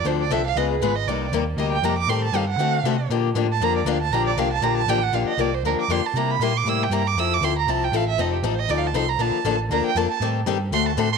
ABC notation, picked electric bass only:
X:1
M:4/4
L:1/8
Q:"Swing" 1/4=236
K:Gm
V:1 name="Picked electric bass" clef=bass
D,,2 C,,2 ^C,,2 ^G,,,2 | C,,2 E,,2 D,,2 F,,2 | A,,2 G,,2 D,2 C,2 | B,,2 A,,2 F,,2 D,,2 |
B,,,2 C,,2 B,,,2 A,,,2 | B,,, z C,,2 D,, z F,, z | C,2 B,,2 A,,2 G,,2 | F,,2 D,,2 C,,2 A,,,2 |
F,,,2 A,,,2 D,,2 C,,2 | B,,, z A,,,2 D,, z F,, z | A,,2 G,,2 D,,2 A,,2 |]